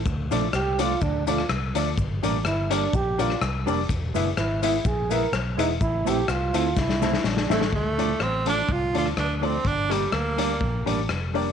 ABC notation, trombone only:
X:1
M:4/4
L:1/8
Q:"Swing" 1/4=125
K:Dm
V:1 name="Trombone"
z2 G F D F z2 | z2 E D G F z2 | z2 E E ^G B z _E | E G F2 E2 D2 |
z8 | z8 |]